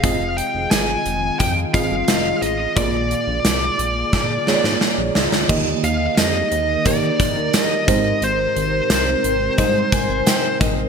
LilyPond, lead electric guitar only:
\new Staff \with { instrumentName = "Lead electric guitar" } { \time 4/4 \key ees \major \tempo 4 = 88 f''8 g''8 aes''4 g''8 f''4 ees''8 | d''2. r4 | r8 f''8 ees''4 d''4 ees''4 | c''4 c''2~ c''8 r8 | }